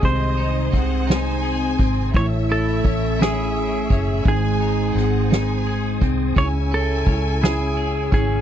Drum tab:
RD |xxxx-x|xxx-x-|xx-xxx|xx-xxx|
SD |---o--|---o--|--oo--|---o--|
BD |o-o--o|o-o--o|o----o|o-o--o|